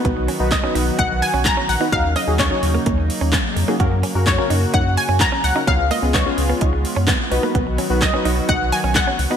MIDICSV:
0, 0, Header, 1, 8, 480
1, 0, Start_track
1, 0, Tempo, 468750
1, 51, Time_signature, 4, 2, 24, 8
1, 9593, End_track
2, 0, Start_track
2, 0, Title_t, "Synth pluck"
2, 0, Program_c, 0, 84
2, 531, Note_on_c, 0, 75, 89
2, 1012, Note_on_c, 0, 78, 107
2, 1026, Note_off_c, 0, 75, 0
2, 1235, Note_off_c, 0, 78, 0
2, 1252, Note_on_c, 0, 80, 101
2, 1493, Note_on_c, 0, 82, 114
2, 1498, Note_off_c, 0, 80, 0
2, 1733, Note_on_c, 0, 78, 92
2, 1739, Note_off_c, 0, 82, 0
2, 1972, Note_on_c, 0, 77, 106
2, 1979, Note_off_c, 0, 78, 0
2, 2212, Note_on_c, 0, 75, 92
2, 2218, Note_off_c, 0, 77, 0
2, 2453, Note_on_c, 0, 73, 79
2, 2459, Note_off_c, 0, 75, 0
2, 3131, Note_off_c, 0, 73, 0
2, 4375, Note_on_c, 0, 73, 83
2, 4855, Note_on_c, 0, 78, 98
2, 4867, Note_off_c, 0, 73, 0
2, 5094, Note_on_c, 0, 80, 105
2, 5100, Note_off_c, 0, 78, 0
2, 5333, Note_on_c, 0, 82, 112
2, 5340, Note_off_c, 0, 80, 0
2, 5573, Note_on_c, 0, 78, 93
2, 5579, Note_off_c, 0, 82, 0
2, 5812, Note_on_c, 0, 77, 99
2, 5819, Note_off_c, 0, 78, 0
2, 6052, Note_on_c, 0, 75, 91
2, 6058, Note_off_c, 0, 77, 0
2, 6160, Note_off_c, 0, 75, 0
2, 6291, Note_on_c, 0, 73, 77
2, 6970, Note_off_c, 0, 73, 0
2, 8214, Note_on_c, 0, 75, 91
2, 8694, Note_on_c, 0, 78, 103
2, 8707, Note_off_c, 0, 75, 0
2, 8934, Note_on_c, 0, 80, 102
2, 8939, Note_off_c, 0, 78, 0
2, 9041, Note_off_c, 0, 80, 0
2, 9173, Note_on_c, 0, 78, 104
2, 9593, Note_off_c, 0, 78, 0
2, 9593, End_track
3, 0, Start_track
3, 0, Title_t, "Synth keys"
3, 0, Program_c, 1, 88
3, 0, Note_on_c, 1, 59, 93
3, 0, Note_on_c, 1, 63, 88
3, 0, Note_on_c, 1, 66, 86
3, 0, Note_on_c, 1, 71, 102
3, 290, Note_off_c, 1, 59, 0
3, 290, Note_off_c, 1, 63, 0
3, 291, Note_off_c, 1, 66, 0
3, 292, Note_off_c, 1, 71, 0
3, 408, Note_on_c, 1, 59, 82
3, 409, Note_on_c, 1, 63, 73
3, 411, Note_on_c, 1, 66, 75
3, 413, Note_on_c, 1, 71, 85
3, 538, Note_off_c, 1, 59, 0
3, 539, Note_off_c, 1, 63, 0
3, 539, Note_off_c, 1, 66, 0
3, 540, Note_off_c, 1, 71, 0
3, 647, Note_on_c, 1, 59, 89
3, 649, Note_on_c, 1, 63, 83
3, 650, Note_on_c, 1, 66, 78
3, 652, Note_on_c, 1, 71, 97
3, 1163, Note_off_c, 1, 59, 0
3, 1164, Note_off_c, 1, 63, 0
3, 1164, Note_off_c, 1, 66, 0
3, 1165, Note_off_c, 1, 71, 0
3, 1847, Note_on_c, 1, 59, 79
3, 1849, Note_on_c, 1, 63, 70
3, 1851, Note_on_c, 1, 66, 73
3, 1852, Note_on_c, 1, 71, 85
3, 1913, Note_off_c, 1, 59, 0
3, 1914, Note_off_c, 1, 63, 0
3, 1915, Note_off_c, 1, 66, 0
3, 1916, Note_off_c, 1, 71, 0
3, 1967, Note_on_c, 1, 61, 84
3, 1969, Note_on_c, 1, 63, 77
3, 1971, Note_on_c, 1, 66, 75
3, 1973, Note_on_c, 1, 70, 93
3, 2162, Note_off_c, 1, 61, 0
3, 2162, Note_off_c, 1, 63, 0
3, 2163, Note_off_c, 1, 66, 0
3, 2164, Note_off_c, 1, 70, 0
3, 2327, Note_on_c, 1, 61, 81
3, 2328, Note_on_c, 1, 63, 76
3, 2330, Note_on_c, 1, 66, 72
3, 2332, Note_on_c, 1, 68, 87
3, 2457, Note_off_c, 1, 61, 0
3, 2458, Note_off_c, 1, 63, 0
3, 2459, Note_off_c, 1, 66, 0
3, 2460, Note_off_c, 1, 68, 0
3, 2567, Note_on_c, 1, 61, 91
3, 2568, Note_on_c, 1, 63, 81
3, 2570, Note_on_c, 1, 66, 84
3, 2571, Note_on_c, 1, 73, 97
3, 3082, Note_off_c, 1, 61, 0
3, 3083, Note_off_c, 1, 63, 0
3, 3084, Note_off_c, 1, 66, 0
3, 3085, Note_off_c, 1, 73, 0
3, 3767, Note_on_c, 1, 61, 91
3, 3769, Note_on_c, 1, 63, 86
3, 3770, Note_on_c, 1, 66, 82
3, 3772, Note_on_c, 1, 68, 101
3, 3833, Note_off_c, 1, 61, 0
3, 3834, Note_off_c, 1, 63, 0
3, 3835, Note_off_c, 1, 66, 0
3, 3836, Note_off_c, 1, 68, 0
3, 3889, Note_on_c, 1, 58, 100
3, 3890, Note_on_c, 1, 61, 89
3, 3892, Note_on_c, 1, 66, 86
3, 3894, Note_on_c, 1, 70, 111
3, 4082, Note_off_c, 1, 58, 0
3, 4083, Note_off_c, 1, 61, 0
3, 4084, Note_off_c, 1, 66, 0
3, 4085, Note_off_c, 1, 70, 0
3, 4249, Note_on_c, 1, 58, 79
3, 4251, Note_on_c, 1, 61, 73
3, 4252, Note_on_c, 1, 66, 74
3, 4253, Note_on_c, 1, 70, 90
3, 4378, Note_off_c, 1, 58, 0
3, 4379, Note_off_c, 1, 61, 0
3, 4380, Note_off_c, 1, 66, 0
3, 4380, Note_off_c, 1, 70, 0
3, 4489, Note_on_c, 1, 58, 89
3, 4490, Note_on_c, 1, 61, 83
3, 4492, Note_on_c, 1, 66, 81
3, 4494, Note_on_c, 1, 70, 98
3, 5004, Note_off_c, 1, 58, 0
3, 5004, Note_off_c, 1, 61, 0
3, 5005, Note_off_c, 1, 66, 0
3, 5006, Note_off_c, 1, 70, 0
3, 5688, Note_on_c, 1, 58, 77
3, 5690, Note_on_c, 1, 61, 73
3, 5692, Note_on_c, 1, 66, 71
3, 5693, Note_on_c, 1, 70, 89
3, 5754, Note_off_c, 1, 58, 0
3, 5754, Note_off_c, 1, 61, 0
3, 5755, Note_off_c, 1, 66, 0
3, 5756, Note_off_c, 1, 70, 0
3, 5809, Note_on_c, 1, 59, 85
3, 5811, Note_on_c, 1, 61, 74
3, 5812, Note_on_c, 1, 65, 79
3, 5814, Note_on_c, 1, 68, 88
3, 6002, Note_off_c, 1, 59, 0
3, 6003, Note_off_c, 1, 61, 0
3, 6004, Note_off_c, 1, 65, 0
3, 6005, Note_off_c, 1, 68, 0
3, 6168, Note_on_c, 1, 59, 81
3, 6170, Note_on_c, 1, 61, 73
3, 6172, Note_on_c, 1, 65, 73
3, 6173, Note_on_c, 1, 68, 91
3, 6298, Note_off_c, 1, 59, 0
3, 6299, Note_off_c, 1, 61, 0
3, 6300, Note_off_c, 1, 65, 0
3, 6300, Note_off_c, 1, 68, 0
3, 6409, Note_on_c, 1, 59, 89
3, 6410, Note_on_c, 1, 61, 86
3, 6412, Note_on_c, 1, 65, 80
3, 6413, Note_on_c, 1, 68, 97
3, 6923, Note_off_c, 1, 59, 0
3, 6924, Note_off_c, 1, 61, 0
3, 6925, Note_off_c, 1, 65, 0
3, 6926, Note_off_c, 1, 68, 0
3, 7487, Note_on_c, 1, 59, 90
3, 7489, Note_on_c, 1, 63, 86
3, 7491, Note_on_c, 1, 66, 86
3, 7493, Note_on_c, 1, 71, 107
3, 7969, Note_off_c, 1, 59, 0
3, 7970, Note_off_c, 1, 63, 0
3, 7971, Note_off_c, 1, 66, 0
3, 7972, Note_off_c, 1, 71, 0
3, 8088, Note_on_c, 1, 59, 84
3, 8089, Note_on_c, 1, 63, 79
3, 8091, Note_on_c, 1, 66, 75
3, 8093, Note_on_c, 1, 71, 92
3, 8218, Note_off_c, 1, 59, 0
3, 8219, Note_off_c, 1, 63, 0
3, 8219, Note_off_c, 1, 66, 0
3, 8220, Note_off_c, 1, 71, 0
3, 8328, Note_on_c, 1, 59, 88
3, 8329, Note_on_c, 1, 63, 81
3, 8331, Note_on_c, 1, 66, 83
3, 8332, Note_on_c, 1, 71, 98
3, 8843, Note_off_c, 1, 59, 0
3, 8844, Note_off_c, 1, 63, 0
3, 8845, Note_off_c, 1, 66, 0
3, 8845, Note_off_c, 1, 71, 0
3, 9527, Note_on_c, 1, 59, 79
3, 9529, Note_on_c, 1, 63, 73
3, 9531, Note_on_c, 1, 66, 74
3, 9532, Note_on_c, 1, 71, 89
3, 9593, Note_off_c, 1, 59, 0
3, 9593, Note_off_c, 1, 63, 0
3, 9593, Note_off_c, 1, 66, 0
3, 9593, Note_off_c, 1, 71, 0
3, 9593, End_track
4, 0, Start_track
4, 0, Title_t, "Clean electric guitar"
4, 0, Program_c, 2, 27
4, 50, Note_on_c, 2, 59, 92
4, 140, Note_off_c, 2, 59, 0
4, 291, Note_on_c, 2, 61, 70
4, 381, Note_off_c, 2, 61, 0
4, 651, Note_on_c, 2, 61, 76
4, 740, Note_off_c, 2, 61, 0
4, 771, Note_on_c, 2, 63, 86
4, 860, Note_off_c, 2, 63, 0
4, 1011, Note_on_c, 2, 63, 79
4, 1100, Note_off_c, 2, 63, 0
4, 1370, Note_on_c, 2, 61, 81
4, 1460, Note_off_c, 2, 61, 0
4, 1610, Note_on_c, 2, 61, 80
4, 1700, Note_off_c, 2, 61, 0
4, 1850, Note_on_c, 2, 63, 87
4, 1940, Note_off_c, 2, 63, 0
4, 1970, Note_on_c, 2, 63, 86
4, 2060, Note_off_c, 2, 63, 0
4, 2210, Note_on_c, 2, 61, 75
4, 2300, Note_off_c, 2, 61, 0
4, 2450, Note_on_c, 2, 61, 84
4, 2540, Note_off_c, 2, 61, 0
4, 2811, Note_on_c, 2, 58, 73
4, 2900, Note_off_c, 2, 58, 0
4, 2931, Note_on_c, 2, 58, 81
4, 3020, Note_off_c, 2, 58, 0
4, 3290, Note_on_c, 2, 61, 77
4, 3380, Note_off_c, 2, 61, 0
4, 3411, Note_on_c, 2, 61, 89
4, 3500, Note_off_c, 2, 61, 0
4, 3770, Note_on_c, 2, 58, 80
4, 3860, Note_off_c, 2, 58, 0
4, 3890, Note_on_c, 2, 66, 90
4, 3980, Note_off_c, 2, 66, 0
4, 4130, Note_on_c, 2, 61, 71
4, 4220, Note_off_c, 2, 61, 0
4, 4490, Note_on_c, 2, 61, 81
4, 4580, Note_off_c, 2, 61, 0
4, 4610, Note_on_c, 2, 63, 87
4, 4699, Note_off_c, 2, 63, 0
4, 4850, Note_on_c, 2, 63, 82
4, 4940, Note_off_c, 2, 63, 0
4, 5210, Note_on_c, 2, 61, 77
4, 5300, Note_off_c, 2, 61, 0
4, 5450, Note_on_c, 2, 61, 79
4, 5540, Note_off_c, 2, 61, 0
4, 5690, Note_on_c, 2, 63, 86
4, 5780, Note_off_c, 2, 63, 0
4, 5809, Note_on_c, 2, 61, 90
4, 5899, Note_off_c, 2, 61, 0
4, 6051, Note_on_c, 2, 58, 76
4, 6140, Note_off_c, 2, 58, 0
4, 6292, Note_on_c, 2, 59, 82
4, 6381, Note_off_c, 2, 59, 0
4, 6651, Note_on_c, 2, 59, 76
4, 6740, Note_off_c, 2, 59, 0
4, 6771, Note_on_c, 2, 63, 82
4, 6860, Note_off_c, 2, 63, 0
4, 7132, Note_on_c, 2, 61, 82
4, 7221, Note_off_c, 2, 61, 0
4, 7252, Note_on_c, 2, 59, 89
4, 7341, Note_off_c, 2, 59, 0
4, 7611, Note_on_c, 2, 58, 87
4, 7700, Note_off_c, 2, 58, 0
4, 7731, Note_on_c, 2, 59, 92
4, 7821, Note_off_c, 2, 59, 0
4, 7971, Note_on_c, 2, 61, 68
4, 8061, Note_off_c, 2, 61, 0
4, 8331, Note_on_c, 2, 61, 78
4, 8421, Note_off_c, 2, 61, 0
4, 8452, Note_on_c, 2, 63, 87
4, 8541, Note_off_c, 2, 63, 0
4, 8692, Note_on_c, 2, 63, 86
4, 8781, Note_off_c, 2, 63, 0
4, 9052, Note_on_c, 2, 61, 78
4, 9141, Note_off_c, 2, 61, 0
4, 9292, Note_on_c, 2, 61, 83
4, 9381, Note_off_c, 2, 61, 0
4, 9532, Note_on_c, 2, 63, 88
4, 9593, Note_off_c, 2, 63, 0
4, 9593, End_track
5, 0, Start_track
5, 0, Title_t, "Analog synth pad"
5, 0, Program_c, 3, 89
5, 0, Note_on_c, 3, 51, 88
5, 0, Note_on_c, 3, 54, 78
5, 0, Note_on_c, 3, 59, 79
5, 0, Note_on_c, 3, 66, 94
5, 1949, Note_off_c, 3, 51, 0
5, 1949, Note_off_c, 3, 59, 0
5, 1949, Note_off_c, 3, 66, 0
5, 1969, Note_on_c, 3, 49, 85
5, 1969, Note_on_c, 3, 58, 74
5, 1969, Note_on_c, 3, 63, 91
5, 3871, Note_off_c, 3, 63, 0
5, 3890, Note_on_c, 3, 66, 93
5, 5770, Note_off_c, 3, 54, 0
5, 5771, Note_off_c, 3, 58, 0
5, 5792, Note_off_c, 3, 66, 0
5, 5810, Note_on_c, 3, 56, 77
5, 5810, Note_on_c, 3, 59, 77
5, 5810, Note_on_c, 3, 65, 95
5, 7449, Note_off_c, 3, 49, 0
5, 7474, Note_off_c, 3, 56, 0
5, 7474, Note_off_c, 3, 65, 0
5, 7489, Note_on_c, 3, 51, 86
5, 7489, Note_on_c, 3, 54, 77
5, 7489, Note_on_c, 3, 66, 94
5, 9593, Note_off_c, 3, 51, 0
5, 9593, Note_off_c, 3, 54, 0
5, 9593, Note_off_c, 3, 59, 0
5, 9593, Note_off_c, 3, 66, 0
5, 9593, End_track
6, 0, Start_track
6, 0, Title_t, "Sub bass"
6, 0, Program_c, 4, 38
6, 51, Note_on_c, 4, 35, 97
6, 291, Note_off_c, 4, 35, 0
6, 410, Note_on_c, 4, 35, 94
6, 650, Note_off_c, 4, 35, 0
6, 770, Note_on_c, 4, 35, 94
6, 930, Note_off_c, 4, 35, 0
6, 1014, Note_on_c, 4, 35, 102
6, 1253, Note_off_c, 4, 35, 0
6, 1371, Note_on_c, 4, 35, 87
6, 1531, Note_off_c, 4, 35, 0
6, 1731, Note_on_c, 4, 34, 88
6, 1811, Note_off_c, 4, 34, 0
6, 1970, Note_on_c, 4, 39, 99
6, 2210, Note_off_c, 4, 39, 0
6, 2330, Note_on_c, 4, 39, 93
6, 2570, Note_off_c, 4, 39, 0
6, 2690, Note_on_c, 4, 39, 90
6, 2850, Note_off_c, 4, 39, 0
6, 2934, Note_on_c, 4, 39, 105
6, 3172, Note_off_c, 4, 39, 0
6, 3290, Note_on_c, 4, 39, 90
6, 3450, Note_off_c, 4, 39, 0
6, 3650, Note_on_c, 4, 41, 90
6, 3730, Note_off_c, 4, 41, 0
6, 3891, Note_on_c, 4, 42, 98
6, 4130, Note_off_c, 4, 42, 0
6, 4250, Note_on_c, 4, 42, 88
6, 4490, Note_off_c, 4, 42, 0
6, 4611, Note_on_c, 4, 42, 92
6, 4771, Note_off_c, 4, 42, 0
6, 4853, Note_on_c, 4, 42, 100
6, 5092, Note_off_c, 4, 42, 0
6, 5211, Note_on_c, 4, 42, 93
6, 5370, Note_off_c, 4, 42, 0
6, 5571, Note_on_c, 4, 37, 93
6, 5651, Note_off_c, 4, 37, 0
6, 5811, Note_on_c, 4, 37, 101
6, 6051, Note_off_c, 4, 37, 0
6, 6171, Note_on_c, 4, 37, 90
6, 6411, Note_off_c, 4, 37, 0
6, 6532, Note_on_c, 4, 37, 89
6, 6691, Note_off_c, 4, 37, 0
6, 6773, Note_on_c, 4, 37, 102
6, 7012, Note_off_c, 4, 37, 0
6, 7132, Note_on_c, 4, 42, 90
6, 7291, Note_off_c, 4, 42, 0
6, 7490, Note_on_c, 4, 35, 89
6, 7570, Note_off_c, 4, 35, 0
6, 7731, Note_on_c, 4, 35, 100
6, 7971, Note_off_c, 4, 35, 0
6, 8091, Note_on_c, 4, 35, 94
6, 8331, Note_off_c, 4, 35, 0
6, 8450, Note_on_c, 4, 35, 91
6, 8610, Note_off_c, 4, 35, 0
6, 8694, Note_on_c, 4, 35, 99
6, 8933, Note_off_c, 4, 35, 0
6, 9051, Note_on_c, 4, 35, 92
6, 9211, Note_off_c, 4, 35, 0
6, 9411, Note_on_c, 4, 36, 92
6, 9491, Note_off_c, 4, 36, 0
6, 9593, End_track
7, 0, Start_track
7, 0, Title_t, "Muted clean electric guitar strokes"
7, 170, Note_on_c, 9, 29, 44
7, 273, Note_off_c, 9, 29, 0
7, 532, Note_on_c, 9, 29, 46
7, 634, Note_off_c, 9, 29, 0
7, 1250, Note_on_c, 9, 29, 49
7, 1352, Note_off_c, 9, 29, 0
7, 1731, Note_on_c, 9, 29, 51
7, 1833, Note_off_c, 9, 29, 0
7, 2090, Note_on_c, 9, 29, 47
7, 2193, Note_off_c, 9, 29, 0
7, 2571, Note_on_c, 9, 29, 47
7, 2673, Note_off_c, 9, 29, 0
7, 3050, Note_on_c, 9, 29, 45
7, 3153, Note_off_c, 9, 29, 0
7, 3650, Note_on_c, 9, 29, 49
7, 3752, Note_off_c, 9, 29, 0
7, 4010, Note_on_c, 9, 29, 46
7, 4113, Note_off_c, 9, 29, 0
7, 4370, Note_on_c, 9, 29, 47
7, 4473, Note_off_c, 9, 29, 0
7, 5090, Note_on_c, 9, 29, 47
7, 5193, Note_off_c, 9, 29, 0
7, 5570, Note_on_c, 9, 29, 48
7, 5673, Note_off_c, 9, 29, 0
7, 5931, Note_on_c, 9, 29, 46
7, 6033, Note_off_c, 9, 29, 0
7, 6411, Note_on_c, 9, 29, 48
7, 6514, Note_off_c, 9, 29, 0
7, 6891, Note_on_c, 9, 29, 45
7, 6994, Note_off_c, 9, 29, 0
7, 7491, Note_on_c, 9, 29, 51
7, 7593, Note_off_c, 9, 29, 0
7, 7852, Note_on_c, 9, 29, 46
7, 7954, Note_off_c, 9, 29, 0
7, 8212, Note_on_c, 9, 29, 46
7, 8314, Note_off_c, 9, 29, 0
7, 8933, Note_on_c, 9, 29, 47
7, 9035, Note_off_c, 9, 29, 0
7, 9412, Note_on_c, 9, 29, 49
7, 9515, Note_off_c, 9, 29, 0
7, 9593, End_track
8, 0, Start_track
8, 0, Title_t, "Drums"
8, 51, Note_on_c, 9, 36, 113
8, 51, Note_on_c, 9, 42, 67
8, 153, Note_off_c, 9, 36, 0
8, 153, Note_off_c, 9, 42, 0
8, 290, Note_on_c, 9, 46, 71
8, 392, Note_off_c, 9, 46, 0
8, 527, Note_on_c, 9, 38, 92
8, 531, Note_on_c, 9, 36, 115
8, 531, Note_on_c, 9, 39, 107
8, 532, Note_on_c, 9, 42, 75
8, 629, Note_off_c, 9, 38, 0
8, 633, Note_off_c, 9, 36, 0
8, 634, Note_off_c, 9, 39, 0
8, 635, Note_off_c, 9, 42, 0
8, 773, Note_on_c, 9, 46, 78
8, 875, Note_off_c, 9, 46, 0
8, 1010, Note_on_c, 9, 42, 86
8, 1014, Note_on_c, 9, 36, 113
8, 1113, Note_off_c, 9, 42, 0
8, 1116, Note_off_c, 9, 36, 0
8, 1253, Note_on_c, 9, 46, 70
8, 1355, Note_off_c, 9, 46, 0
8, 1483, Note_on_c, 9, 38, 92
8, 1488, Note_on_c, 9, 39, 117
8, 1489, Note_on_c, 9, 42, 78
8, 1492, Note_on_c, 9, 36, 123
8, 1585, Note_off_c, 9, 38, 0
8, 1590, Note_off_c, 9, 39, 0
8, 1592, Note_off_c, 9, 42, 0
8, 1595, Note_off_c, 9, 36, 0
8, 1731, Note_on_c, 9, 46, 70
8, 1833, Note_off_c, 9, 46, 0
8, 1970, Note_on_c, 9, 36, 114
8, 1971, Note_on_c, 9, 42, 66
8, 2073, Note_off_c, 9, 36, 0
8, 2073, Note_off_c, 9, 42, 0
8, 2210, Note_on_c, 9, 46, 68
8, 2312, Note_off_c, 9, 46, 0
8, 2447, Note_on_c, 9, 38, 88
8, 2451, Note_on_c, 9, 36, 114
8, 2452, Note_on_c, 9, 39, 109
8, 2452, Note_on_c, 9, 42, 74
8, 2549, Note_off_c, 9, 38, 0
8, 2553, Note_off_c, 9, 36, 0
8, 2554, Note_off_c, 9, 39, 0
8, 2555, Note_off_c, 9, 42, 0
8, 2692, Note_on_c, 9, 46, 76
8, 2794, Note_off_c, 9, 46, 0
8, 2930, Note_on_c, 9, 42, 88
8, 2934, Note_on_c, 9, 36, 116
8, 3032, Note_off_c, 9, 42, 0
8, 3036, Note_off_c, 9, 36, 0
8, 3173, Note_on_c, 9, 46, 73
8, 3275, Note_off_c, 9, 46, 0
8, 3403, Note_on_c, 9, 38, 88
8, 3408, Note_on_c, 9, 39, 117
8, 3409, Note_on_c, 9, 42, 77
8, 3413, Note_on_c, 9, 36, 125
8, 3506, Note_off_c, 9, 38, 0
8, 3510, Note_off_c, 9, 39, 0
8, 3512, Note_off_c, 9, 42, 0
8, 3515, Note_off_c, 9, 36, 0
8, 3651, Note_on_c, 9, 46, 72
8, 3753, Note_off_c, 9, 46, 0
8, 3891, Note_on_c, 9, 36, 113
8, 3891, Note_on_c, 9, 42, 69
8, 3993, Note_off_c, 9, 36, 0
8, 3993, Note_off_c, 9, 42, 0
8, 4130, Note_on_c, 9, 46, 64
8, 4232, Note_off_c, 9, 46, 0
8, 4367, Note_on_c, 9, 38, 87
8, 4371, Note_on_c, 9, 36, 115
8, 4372, Note_on_c, 9, 39, 109
8, 4372, Note_on_c, 9, 42, 73
8, 4469, Note_off_c, 9, 38, 0
8, 4474, Note_off_c, 9, 36, 0
8, 4474, Note_off_c, 9, 39, 0
8, 4475, Note_off_c, 9, 42, 0
8, 4612, Note_on_c, 9, 46, 73
8, 4715, Note_off_c, 9, 46, 0
8, 4850, Note_on_c, 9, 42, 91
8, 4854, Note_on_c, 9, 36, 118
8, 4953, Note_off_c, 9, 42, 0
8, 4956, Note_off_c, 9, 36, 0
8, 5093, Note_on_c, 9, 46, 73
8, 5195, Note_off_c, 9, 46, 0
8, 5323, Note_on_c, 9, 38, 89
8, 5328, Note_on_c, 9, 39, 112
8, 5329, Note_on_c, 9, 42, 77
8, 5333, Note_on_c, 9, 36, 121
8, 5425, Note_off_c, 9, 38, 0
8, 5430, Note_off_c, 9, 39, 0
8, 5432, Note_off_c, 9, 42, 0
8, 5435, Note_off_c, 9, 36, 0
8, 5571, Note_on_c, 9, 46, 69
8, 5673, Note_off_c, 9, 46, 0
8, 5811, Note_on_c, 9, 36, 119
8, 5811, Note_on_c, 9, 42, 66
8, 5913, Note_off_c, 9, 36, 0
8, 5913, Note_off_c, 9, 42, 0
8, 6050, Note_on_c, 9, 46, 67
8, 6152, Note_off_c, 9, 46, 0
8, 6287, Note_on_c, 9, 38, 92
8, 6291, Note_on_c, 9, 36, 117
8, 6292, Note_on_c, 9, 39, 109
8, 6292, Note_on_c, 9, 42, 71
8, 6389, Note_off_c, 9, 38, 0
8, 6394, Note_off_c, 9, 36, 0
8, 6394, Note_off_c, 9, 39, 0
8, 6395, Note_off_c, 9, 42, 0
8, 6532, Note_on_c, 9, 46, 74
8, 6634, Note_off_c, 9, 46, 0
8, 6770, Note_on_c, 9, 42, 88
8, 6774, Note_on_c, 9, 36, 117
8, 6872, Note_off_c, 9, 42, 0
8, 6876, Note_off_c, 9, 36, 0
8, 7012, Note_on_c, 9, 46, 70
8, 7114, Note_off_c, 9, 46, 0
8, 7243, Note_on_c, 9, 38, 89
8, 7248, Note_on_c, 9, 39, 115
8, 7249, Note_on_c, 9, 42, 79
8, 7253, Note_on_c, 9, 36, 126
8, 7345, Note_off_c, 9, 38, 0
8, 7350, Note_off_c, 9, 39, 0
8, 7351, Note_off_c, 9, 42, 0
8, 7355, Note_off_c, 9, 36, 0
8, 7491, Note_on_c, 9, 46, 67
8, 7593, Note_off_c, 9, 46, 0
8, 7731, Note_on_c, 9, 36, 113
8, 7731, Note_on_c, 9, 42, 68
8, 7833, Note_off_c, 9, 36, 0
8, 7833, Note_off_c, 9, 42, 0
8, 7970, Note_on_c, 9, 46, 65
8, 8072, Note_off_c, 9, 46, 0
8, 8207, Note_on_c, 9, 38, 85
8, 8211, Note_on_c, 9, 36, 115
8, 8212, Note_on_c, 9, 39, 110
8, 8212, Note_on_c, 9, 42, 76
8, 8309, Note_off_c, 9, 38, 0
8, 8314, Note_off_c, 9, 36, 0
8, 8314, Note_off_c, 9, 39, 0
8, 8315, Note_off_c, 9, 42, 0
8, 8452, Note_on_c, 9, 46, 72
8, 8554, Note_off_c, 9, 46, 0
8, 8691, Note_on_c, 9, 42, 90
8, 8694, Note_on_c, 9, 36, 117
8, 8793, Note_off_c, 9, 42, 0
8, 8796, Note_off_c, 9, 36, 0
8, 8933, Note_on_c, 9, 46, 67
8, 9035, Note_off_c, 9, 46, 0
8, 9164, Note_on_c, 9, 38, 89
8, 9169, Note_on_c, 9, 39, 115
8, 9170, Note_on_c, 9, 42, 79
8, 9173, Note_on_c, 9, 36, 127
8, 9266, Note_off_c, 9, 38, 0
8, 9271, Note_off_c, 9, 39, 0
8, 9272, Note_off_c, 9, 42, 0
8, 9276, Note_off_c, 9, 36, 0
8, 9411, Note_on_c, 9, 46, 70
8, 9514, Note_off_c, 9, 46, 0
8, 9593, End_track
0, 0, End_of_file